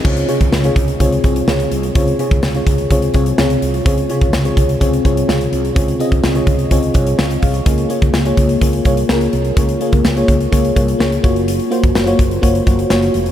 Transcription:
<<
  \new Staff \with { instrumentName = "FM electric piano" } { \time 4/4 \key des \major \tempo 4 = 126 << { r1 | r1 | r1 | r2. <f'' des'''>8 <aes' f''>8~ |
<aes' f''>8 r2. r8 | r1 | r1 | } \\ { <c' f' aes' des''>8 <c f' aes' des''>8. <c f' aes' des''>8. <c' f' aes' des''>8 <c' f' aes' des''>8 <c f' aes' des''>4 | <c' f' aes' des''>8 <c f' aes' des''>8. <c f' aes' des''>8. <c' f' aes' des''>8 <c' f' aes' des''>8 <c f' aes' des''>4 | <c' f' aes' des''>8 <c f' aes' des''>8. <c f' aes' des''>8. <c' f' aes' des''>8 <c' f' aes' des''>8 <c f' aes' des''>4 | <c' f' aes' des''>8 <c' f' aes' ees''>8. <c f' aes' des''>8. <c' f' aes' des''>8 <c' f' aes' des''>8 r4 |
<bes f' aes' des''>8 <bes f' aes' des''>8. <bes f' aes' des''>8. <bes f' aes' des''>8 <bes f' aes' des''>8 <bes f' aes' bes'>4 | <bes f' aes' des''>8 <bes f' aes' des''>8. <bes f' aes' des''>8. <bes f' aes' des''>8 <bes f' aes' des''>8 <bes f' aes' des''>8 <bes f' ges' des''>8~ | <bes f' ges' des''>8 <bes f' ges' c''>8. <bes f' ges' des''>8. <bes f' ges' des''>8 <bes f' ges' des''>8 <bes f' ges' des''>4 | } >> }
  \new Staff \with { instrumentName = "FM electric piano" } { \clef bass \time 4/4 \key des \major des4. r2 r8 | des4. r2 r8 | des4. r2 r8 | des4. r2 r8 |
des4. r2 r8 | des4. r2 r8 | r1 | }
  \new Staff \with { instrumentName = "Fretless electric bass" } { \clef bass \time 4/4 \key des \major des,8 r16 des,16 des,8 des,8 des,8 c,8 des,8 c,8 | des,8 r16 des,16 des,8 des,8 des,8 c,8 des,8 c,8 | des,8 r16 des,16 des,8 des,8 des,8 c,8 des,8 c,8 | des,8 r16 des,16 des,8 des,8 des,8 c,8 des,8 c,8 |
des,8 r16 des,16 des,8 des,8 des,8 c,8 des,8 c,8 | des,8 r16 des,16 des,8 des,8 des,8 c,8 des,8 ges,,8~ | ges,,8 r16 ges,,16 ges,,8 ges,,8 ges,,8 ges,,8 ges,,8 f,,8 | }
  \new DrumStaff \with { instrumentName = "Drums" } \drummode { \time 4/4 <cymc bd>16 hh16 hh16 <hh bd>16 sn16 hh16 <hh bd>16 hh16 <hh bd>16 hh16 <hh bd>16 hh16 sn16 hh16 hh16 hh16 | <hh bd>16 hh16 hh16 <hh bd>16 <sn tamb>16 hh16 <hh bd>16 hh16 <hh bd>16 hh16 <hh bd>16 hh16 <sn tamb>16 hh16 hh16 hh16 | <hh bd>16 hh16 hh16 <hh bd>16 <sn tamb>16 hh16 <hh bd>16 hh16 <hh bd>16 hh16 <hh bd>16 hh16 <sn tamb>16 hh16 hh16 hh16 | <hh bd>16 hh16 hh16 <hh bd>16 <sn tamb>16 hh16 <hh bd>16 hh16 <hh bd>16 hh16 <hh bd>16 hh16 <sn tamb>16 hh16 <hho bd>16 hh16 |
<hh bd>16 hh16 hh16 <hh bd>16 <sn tamb>16 hh16 <hh bd>16 hh16 <hh bd>16 hh16 <hh bd>16 hh16 <sn tamb>16 hh16 hh16 hh16 | <hh bd>16 hh16 hh16 <hh bd>16 <sn tamb>16 hh16 <hh bd>16 hh16 <hh bd>16 hh16 <hh bd>16 hh16 <sn tamb>16 hh16 <hh bd>16 hh16 | hh16 hh16 hh16 <hh bd>16 <sn tamb>16 hh16 <hh bd>16 hh16 <hh bd>16 hh16 <hh bd>16 hh16 <sn tamb>16 hh16 hh16 hh16 | }
>>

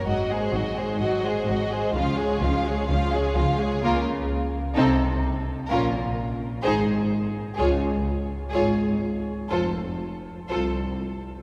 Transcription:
<<
  \new Staff \with { instrumentName = "Violin section" } { \time 4/4 \key des \major \tempo 4 = 127 ees''8 c''8 ees''8 c''8 ees''8 c''8 ees''8 c''8 | f''8 des''8 f''8 des''8 f''8 des''8 f''8 des''8 | \key bes \minor bes'8 r4. a'8 r4. | bes'8 r4. c''8 r4. |
des''8 r4. des''8 r4. | c''8 r4. c''8 r4. | }
  \new Staff \with { instrumentName = "Violin section" } { \time 4/4 \key des \major ges'8 aes'8 ges'8 aes'8 ges'8 aes'8 ges'8 aes'8 | f'8 aes'8 f'8 aes'8 f'8 aes'8 f'8 aes'8 | \key bes \minor f'8 r4. ees'8 r4. | f'8 r4. aes'8 r4. |
aes'8 r4. aes'8 r4. | a'8 r4. a'8 r4. | }
  \new Staff \with { instrumentName = "Viola section" } { \clef bass \time 4/4 \key des \major ges8 aes8 ges8 aes8 ges8 aes8 ges8 aes8 | f8 aes8 f8 aes8 f8 aes8 f8 aes8 | \key bes \minor bes8 r4. c'8 r4. | des'8 r4. ees'8 r4. |
f'8 r4. f'8 r4. | f'8 r4. f'8 r4. | }
  \new Staff \with { instrumentName = "Cello section" } { \clef bass \time 4/4 \key des \major aes,4 aes,4 aes,4 aes,4 | des4 des4 des4 des4 | \key bes \minor des4 r4 c4 r4 | bes,4 r4 aes,4 r4 |
des,4 r4 aes,4 r4 | f,4 r4 c,4 r4 | }
  \new Staff \with { instrumentName = "Double bass section" } { \clef bass \time 4/4 \key des \major aes,,4 aes,,4 aes,,4 aes,,4 | des,4 des,4 des,4 des,4 | \key bes \minor des,4 r4 c,4 r4 | bes,,4 r4 aes,,4 r4 |
des,4 r4 aes,,4 r4 | f,,4 r4 c,4 r4 | }
>>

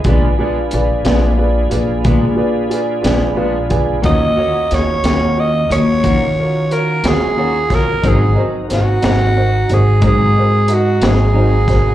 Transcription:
<<
  \new Staff \with { instrumentName = "Upright piano" } { \time 12/8 \key bes \phrygian \tempo 4. = 60 <f' aes' ces'' d''>8 <f' aes' ces'' d''>8 <f' aes' ces'' d''>8 <f' aes' ces'' d''>8 <f' aes' ces'' d''>8 <f' aes' ces'' d''>8 <f' aes' ces'' d''>8 <f' aes' ces'' d''>8 <f' aes' ces'' d''>8 <f' aes' ces'' d''>8 <f' aes' ces'' d'' f''>8 <f' aes' ces'' d'' aes''>8 | <f' ges' bes' des''>8 <f' ges' bes' des''>8 <f' ges' bes' des''>8 <f' ges' bes' des''>8 <f' ges' bes' des''>8 <f' ges' bes' des''>8 <f' ges' bes' des''>8 <f' ges' bes' des''>8 <f' ges' bes' des''>8 <f' ges' bes' des''>8 <f' ges' bes' des''>8 <f' ges' bes' des''>8 | <ees' ges' bes' c''>8 <ees' ges' bes' c''>8 <ees' ges' bes' c''>8 <ees' ges' bes' c''>8 <ees' ges' bes' c''>8 <ees' ges' bes' c''>8 <ees' ges' bes' c''>8 <ees' ges' bes' c''>8 <ees' ges' bes' ees''>8 <ees' ges' bes' c''>8 <ees' ges' bes' c''>8 <ees' ges' bes' c''>8 | }
  \new Staff \with { instrumentName = "Tenor saxophone" } { \time 12/8 \key bes \phrygian r1. | ees''4 des''4 ees''8 des''4. bes'8 aes'4 bes'8 | aes'8 r8 ges'4. aes'8 aes'4 ges'8 aes'4. | }
  \new Staff \with { instrumentName = "Tonewheel organ" } { \time 12/8 \key bes \phrygian <d' f' aes' ces''>1. | <des' f' ges' bes'>1. | <c' ees' ges' bes'>1. | }
  \new Staff \with { instrumentName = "Clean electric guitar" } { \time 12/8 \key bes \phrygian <bes, aes ces' d'>8 <aes ces' d'>8 r8 <aes ces' d'>8 r4 <bes, aes ces' d'>8 r4 <aes ces' d'>8 <bes, aes ces' d'>8 r8 | <ees bes des' ges'>8 <bes des' ges'>8 r8 <bes des' ges'>8 r4 <ees bes des' ges'>8 r4 <bes des' ges'>8 <ees bes des' ges'>8 r8 | <aes, ges c' ees'>8 <ges c' ees'>8 r8 <ges c' ees'>8 r4 <aes, ges c' ees'>8 r4 <ges c' ees'>8 <aes, ges c' ees'>8 r8 | }
  \new Staff \with { instrumentName = "Upright bass" } { \clef bass \time 12/8 \key bes \phrygian bes,,8 r8 bes,,8 bes,,4 bes,,8 bes,4. bes,,4. | ees,8 r8 ees,8 ees,4 ees,8 ees4. ees,4. | aes,,8 r8 aes,,8 aes,,4 aes,,8 aes,4. aes,,4. | }
  \new DrumStaff \with { instrumentName = "Drums" } \drummode { \time 12/8 <hh bd>4 hh8 <hh sn>4 hh8 <hh bd>4 hh8 <hh sn>4 <hh bd>8 | <hh bd>4 <hh sn>8 <hh sn>4 hh8 <hh bd>4 hh8 <hh sn>4 <hh bd sn>8 | <hh bd>4 <hh sn>8 <hh sn>4 hh8 <hh bd>4 hh8 <hh sn>4 <hh bd sn>8 | }
>>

